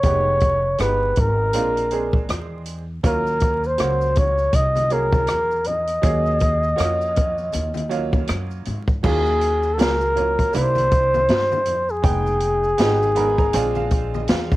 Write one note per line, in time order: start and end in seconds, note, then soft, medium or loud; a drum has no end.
0.00 0.75 F1 medium
0.00 0.11 G3 medium
0.00 0.65 B3 medium
0.00 0.80 C#5 loud
0.00 kick loud
0.00 closed hi-hat medium
0.04 0.65 D#4 medium
0.04 0.66 G4 medium
0.10 0.68 G#3 medium
0.40 kick medium
0.40 closed hi-hat medium
0.78 1.15 G1 medium
0.78 1.52 G#3 medium
0.78 1.54 B3 medium
0.78 1.54 D#4 medium
0.78 1.54 G4 medium
0.78 1.21 B4 medium
0.78 cross-stick loud
0.78 closed hi-hat medium
1.16 1.54 G#1 medium
1.16 kick medium
1.16 closed hi-hat medium
1.20 2.31 A#4 medium
1.53 2.25 A#1 loud
1.53 1.85 G#3 medium
1.53 1.85 C4 medium
1.53 1.86 D4 medium
1.53 1.86 F4 medium
1.53 closed hi-hat loud
1.77 closed hi-hat soft
1.91 2.80 G#3 medium
1.91 2.80 C4 medium
1.91 2.80 D4 medium
1.91 2.81 G#4 medium
1.91 closed hi-hat medium
2.13 kick medium
2.29 3.00 E2 medium
2.29 cross-stick loud
2.29 closed hi-hat medium
2.66 closed hi-hat medium
3.03 3.75 D#2 loud
3.03 3.64 F#3 medium
3.03 3.65 A#3 medium
3.03 3.65 C#4 medium
3.03 3.65 F4 medium
3.03 3.68 A#4 medium
3.03 kick loud
3.03 closed hi-hat medium
3.03 maracas medium
3.27 maracas soft
3.40 kick medium
3.40 closed hi-hat medium
3.40 maracas soft
3.63 4.20 C5 medium
3.63 maracas soft
3.78 4.51 C#2 medium
3.78 4.67 F#3 medium
3.78 4.67 A#3 medium
3.78 4.67 C#4 medium
3.78 4.68 F#4 medium
3.78 cross-stick loud
3.78 closed hi-hat medium
3.78 maracas medium
4.01 maracas soft
4.15 4.56 C#5 medium
4.15 kick medium
4.15 closed hi-hat medium
4.15 low conga medium
4.15 maracas soft
4.38 maracas soft
4.53 5.25 C2 medium
4.53 4.94 D#5 loud
4.53 kick medium
4.53 closed hi-hat loud
4.53 high conga soft
4.53 maracas medium
4.75 closed hi-hat soft
4.75 high conga medium
4.75 maracas soft
4.90 5.79 F#3 medium
4.90 5.79 A#3 medium
4.90 5.80 C#4 medium
4.90 5.80 G#4 medium
4.90 5.69 A#4 medium
4.90 closed hi-hat medium
4.90 maracas soft
5.12 kick loud
5.12 high conga medium
5.12 maracas soft
5.27 6.00 E2 medium
5.27 cross-stick loud
5.27 closed hi-hat medium
5.27 maracas medium
5.51 maracas medium
5.64 8.29 D#5 medium
5.64 closed hi-hat medium
5.64 low conga soft
5.64 maracas soft
5.87 closed hi-hat medium
5.87 maracas soft
6.02 6.75 D#2 loud
6.02 6.64 F#3 medium
6.02 6.64 A#3 medium
6.02 6.64 C#4 medium
6.02 6.64 G#4 medium
6.02 kick loud
6.02 closed hi-hat medium
6.02 maracas medium
6.26 maracas soft
6.40 kick medium
6.40 closed hi-hat medium
6.40 maracas soft
6.63 maracas soft
6.76 7.50 F2 medium
6.76 7.66 A#3 medium
6.76 7.66 C#4 medium
6.76 7.67 F4 medium
6.76 7.66 F#4 medium
6.76 closed hi-hat medium
6.76 maracas medium
6.80 cross-stick loud
7.01 maracas soft
7.16 kick medium
7.16 closed hi-hat medium
7.16 low conga medium
7.16 maracas soft
7.38 maracas soft
7.53 8.25 D#2 medium
7.53 closed hi-hat loud
7.53 high conga soft
7.53 maracas medium
7.74 closed hi-hat soft
7.74 high conga medium
7.74 maracas soft
7.89 8.79 F#3 medium
7.89 8.79 A#3 medium
7.89 8.80 C#4 medium
7.89 8.80 F4 medium
7.89 closed hi-hat medium
7.89 maracas soft
8.13 kick medium
8.13 high conga medium
8.13 maracas soft
8.28 8.65 F#2 medium
8.28 cross-stick loud
8.28 closed hi-hat medium
8.28 maracas medium
8.51 maracas soft
8.65 9.02 G#2 medium
8.65 closed hi-hat medium
8.65 low conga soft
8.65 maracas soft
8.88 kick medium
8.88 maracas soft
9.03 9.80 D#2 loud
9.03 9.64 F#3 medium
9.03 9.65 A#3 medium
9.03 9.65 C#4 medium
9.03 9.65 F4 medium
9.03 9.75 G#4 medium
9.03 kick loud
9.03 crash medium
9.03 maracas medium
9.26 maracas soft
9.41 closed hi-hat medium
9.41 maracas soft
9.63 maracas soft
9.74 10.09 F#3 medium
9.74 9.82 A4 medium
9.78 10.50 C#2 medium
9.78 10.09 A#3 medium
9.78 10.09 C#4 medium
9.78 10.10 G#4 medium
9.78 10.55 A#4 loud
9.78 snare loud
9.78 closed hi-hat medium
9.78 maracas medium
10.01 maracas soft
10.16 10.54 F#3 medium
10.16 10.52 A#3 medium
10.16 10.54 C#4 medium
10.16 10.55 F4 medium
10.16 closed hi-hat medium
10.16 low conga medium
10.16 maracas soft
10.39 kick medium
10.39 closed hi-hat medium
10.39 maracas soft
10.53 11.26 C2 medium
10.53 11.75 G3 medium
10.53 11.75 A#3 medium
10.53 11.75 D4 medium
10.53 11.76 E4 medium
10.53 11.92 C5 loud
10.53 closed hi-hat loud
10.53 high conga soft
10.53 maracas medium
10.75 closed hi-hat soft
10.75 high conga medium
10.75 maracas soft
10.91 kick medium
10.91 closed hi-hat medium
10.91 maracas soft
11.14 high conga medium
11.14 maracas soft
11.28 11.67 G2 medium
11.28 snare loud
11.28 closed hi-hat medium
11.28 maracas medium
11.52 high conga medium
11.52 maracas soft
11.66 12.02 F2 medium
11.66 closed hi-hat medium
11.66 low conga medium
11.66 maracas soft
11.89 14.57 G#4 medium
11.89 maracas soft
12.02 12.75 F1 medium
12.02 12.64 G#3 medium
12.02 12.64 B3 medium
12.02 12.65 D#4 medium
12.02 12.65 G5 medium
12.02 kick loud
12.02 closed hi-hat medium
12.02 maracas medium
12.27 maracas soft
12.40 closed hi-hat medium
12.40 maracas soft
12.64 maracas soft
12.78 13.50 G#1 medium
12.78 13.09 G#3 medium
12.78 13.09 B3 medium
12.78 13.09 D#4 medium
12.78 13.10 G4 loud
12.78 snare loud
12.78 closed hi-hat medium
12.78 maracas medium
13.02 maracas soft
13.15 13.52 G#3 medium
13.15 13.53 B3 medium
13.15 13.54 D#4 medium
13.15 13.54 A#4 loud
13.15 13.37 B5 medium
13.15 closed hi-hat medium
13.15 low conga medium
13.15 maracas soft
13.38 13.53 A#5 medium
13.38 kick medium
13.38 maracas soft
13.53 14.25 A#1 loud
13.53 14.57 G#3 medium
13.53 14.57 C4 medium
13.53 14.57 D4 medium
13.53 14.57 F4 loud
13.53 13.75 G#5 medium
13.53 closed hi-hat loud
13.53 high conga soft
13.53 maracas medium
13.75 14.11 F5 medium
13.75 high conga medium
13.75 maracas soft
13.91 kick medium
13.91 closed hi-hat medium
13.91 maracas soft
14.14 14.28 D#5 medium
14.14 high conga medium
14.14 maracas soft
14.27 14.57 E2 medium
14.27 14.57 F5 medium
14.27 snare loud
14.27 closed hi-hat medium
14.27 maracas medium
14.51 kick medium
14.51 high conga medium
14.51 maracas medium